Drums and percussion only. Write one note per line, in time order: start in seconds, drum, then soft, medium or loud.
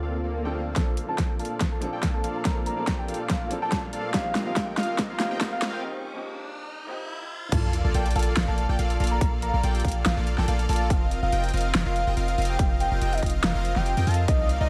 0.76 kick medium
0.76 snare soft
0.76 closed hi-hat medium
0.97 closed hi-hat medium
1.18 kick medium
1.18 snare soft
1.18 closed hi-hat medium
1.39 closed hi-hat soft
1.45 closed hi-hat medium
1.61 kick medium
1.61 snare medium
1.61 closed hi-hat medium
1.82 closed hi-hat medium
2.03 kick medium
2.03 snare medium
2.03 closed hi-hat medium
2.24 closed hi-hat medium
2.45 kick medium
2.45 snare medium
2.45 closed hi-hat medium
2.66 closed hi-hat medium
2.87 kick medium
2.87 snare medium
2.87 closed hi-hat medium
3.08 closed hi-hat medium
3.14 closed hi-hat medium
3.30 kick loud
3.30 snare medium
3.30 closed hi-hat medium
3.51 closed hi-hat medium
3.72 kick medium
3.72 snare medium
3.72 closed hi-hat medium
3.93 closed hi-hat medium
4.14 kick medium
4.14 snare medium
4.14 closed hi-hat medium
4.35 snare medium
4.35 closed hi-hat medium
4.56 kick medium
4.56 snare medium
4.56 closed hi-hat medium
4.77 snare medium
4.77 closed hi-hat soft
4.83 closed hi-hat medium
4.98 kick loud
4.98 snare medium
4.98 closed hi-hat medium
5.20 snare medium
5.20 closed hi-hat medium
5.41 kick loud
5.41 snare medium
5.41 closed hi-hat medium
5.62 snare medium
5.62 closed hi-hat medium
7.52 kick loud
7.52 closed hi-hat medium
7.52 crash loud
7.73 closed hi-hat medium
7.94 closed hi-hat medium
8.06 closed hi-hat medium
8.11 closed hi-hat medium
8.16 closed hi-hat medium
8.19 closed hi-hat medium
8.23 closed hi-hat medium
8.37 snare loud
8.37 closed hi-hat medium
8.58 closed hi-hat medium
8.79 closed hi-hat medium
8.90 closed hi-hat medium
9.00 closed hi-hat medium
9.04 closed hi-hat medium
9.07 closed hi-hat medium
9.21 kick loud
9.21 closed hi-hat medium
9.42 closed hi-hat medium
9.63 closed hi-hat medium
9.75 closed hi-hat medium
9.80 closed hi-hat medium
9.85 kick medium
9.85 closed hi-hat medium
9.88 closed hi-hat medium
9.92 closed hi-hat medium
10.06 snare loud
10.06 closed hi-hat medium
10.27 closed hi-hat medium
10.38 snare soft
10.48 closed hi-hat medium
10.59 closed hi-hat medium
10.69 closed hi-hat medium
10.69 open hi-hat medium
10.76 closed hi-hat medium
10.90 kick loud
10.90 closed hi-hat medium
11.11 closed hi-hat medium
11.32 closed hi-hat medium
11.44 closed hi-hat soft
11.49 closed hi-hat medium
11.54 closed hi-hat medium
11.57 closed hi-hat medium
11.61 closed hi-hat medium
11.75 snare loud
11.75 closed hi-hat medium
11.96 closed hi-hat medium
12.17 closed hi-hat medium
12.28 closed hi-hat medium
12.38 closed hi-hat medium
12.42 closed hi-hat medium
12.45 closed hi-hat medium
12.59 kick loud
12.59 closed hi-hat medium
12.80 closed hi-hat medium
13.02 closed hi-hat medium
13.13 closed hi-hat medium
13.18 closed hi-hat medium
13.23 kick medium
13.23 closed hi-hat soft
13.26 closed hi-hat medium
13.30 closed hi-hat medium
13.44 snare loud
13.44 closed hi-hat medium
13.65 closed hi-hat medium
13.76 snare soft
13.86 closed hi-hat medium
13.97 closed hi-hat medium
14.07 closed hi-hat medium
14.07 open hi-hat medium
14.14 closed hi-hat medium
14.28 kick loud
14.28 closed hi-hat medium
14.49 closed hi-hat medium